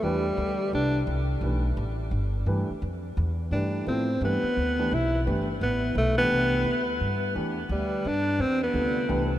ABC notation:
X:1
M:3/4
L:1/16
Q:"Swing" 1/4=172
K:C
V:1 name="Grand piano"
[E,A,DGB]2 z8 z2 | z4 [E,A,DGB]2 z6 | z4 [E,A,DGB]2 z6 | z4 [E,A,DGB]4 [F,B,EAc]2 z2 |
[E,A,DGB]2 z4 [E,A,DGB]2 z4 | [E,A,DGB]2 z8 [E,A,DGB]2- | [E,A,DGB]4 z8 | [E,A,DGB]2 z8 z2 |
z4 [C,D,G,FA]4 [E,A,DGB]2 z2 |]
V:2 name="Tenor saxophone"
G,8 D3 z | z12 | z12 | z4 D4 C4 |
B,8 E3 z | z4 B,4 A,2 B,2- | B,8 z4 | z4 G,4 D4 |
C2 B,8 z2 |]
V:3 name="Upright bass" clef=bass
E,,4 D,,4 C,,4 | C,,4 B,,,4 A,,,4 | G,,,4 G,,2 z2 F,,4 | E,,4 G,,4 A,,4 |
G,,2 z2 D,,4 B,,,4 | G,,,4 A,,,4 B,,,4 | C,,4 D,,4 G,,4 | E,,4 D,,4 G,,4 |
E,,4 D,,4 C,,4 |]